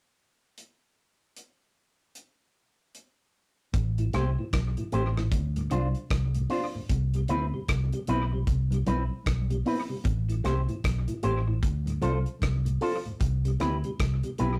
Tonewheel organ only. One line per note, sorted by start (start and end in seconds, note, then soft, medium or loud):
3.98 4.05 A2 medium
3.98 4.05 E3 medium
4.14 4.24 A3 medium
4.14 4.24 C4 medium
4.14 4.24 G4 medium
4.39 4.44 A2 medium
4.39 4.45 E3 medium
4.78 4.84 A2 medium
4.78 4.84 E3 medium
4.92 5.02 A3 medium
4.92 5.03 C4 medium
4.92 5.03 G4 medium
5.17 5.23 A2 medium
5.17 5.23 E3 medium
5.56 5.63 D2 medium
5.56 5.62 A2 medium
5.71 5.81 C4 medium
5.71 5.82 D4 medium
5.71 5.82 F4 medium
6.35 6.41 D2 soft
6.35 6.42 A2 medium
6.51 6.60 C4 medium
6.51 6.60 D4 medium
6.51 6.61 F4 medium
6.75 6.81 D2 medium
6.75 6.81 A2 medium
7.15 7.21 C3 medium
7.15 7.21 G3 medium
7.30 7.39 B3 medium
7.30 7.40 C4 medium
7.30 7.40 E4 medium
7.54 7.60 C3 medium
7.54 7.60 G3 medium
7.93 7.99 C3 medium
7.93 7.99 G3 medium
8.08 8.18 B3 medium
8.08 8.18 C4 medium
8.08 8.18 E4 medium
8.33 8.39 C3 medium
8.33 8.39 G3 medium
8.72 8.78 C3 medium
8.72 8.78 G3 medium
8.86 8.97 B3 medium
8.86 8.97 C4 medium
8.86 8.97 E4 medium
9.50 9.57 C3 medium
9.50 9.57 G3 medium
9.65 9.76 B3 medium
9.65 9.76 C4 medium
9.65 9.76 E4 medium
9.89 9.96 C3 medium
9.89 9.96 G3 medium
10.29 10.35 A2 medium
10.29 10.35 E3 medium
10.44 10.54 A3 medium
10.44 10.54 C4 medium
10.44 10.55 G4 medium
10.68 10.75 A2 medium
10.68 10.75 E3 medium
11.08 11.14 A2 medium
11.08 11.14 E3 medium
11.23 11.33 A3 medium
11.23 11.33 C4 medium
11.23 11.33 G4 medium
11.47 11.54 A2 medium
11.47 11.54 E3 medium
11.87 11.94 D2 medium
11.87 11.93 A2 medium
12.02 12.12 C4 medium
12.02 12.13 D4 medium
12.02 12.13 F4 medium
12.65 12.72 D2 medium
12.65 12.72 A2 medium
12.81 12.91 C4 medium
12.81 12.91 D4 medium
12.81 12.92 F4 medium
13.05 13.12 D2 medium
13.05 13.11 A2 medium
13.45 13.51 C3 medium
13.45 13.51 G3 medium
13.60 13.70 B3 medium
13.60 13.70 C4 medium
13.60 13.70 E4 medium
13.85 13.91 C3 medium
13.85 13.91 G3 medium
14.24 14.30 C3 medium
14.24 14.30 G3 medium
14.39 14.49 B3 medium
14.39 14.49 C4 medium
14.39 14.49 E4 medium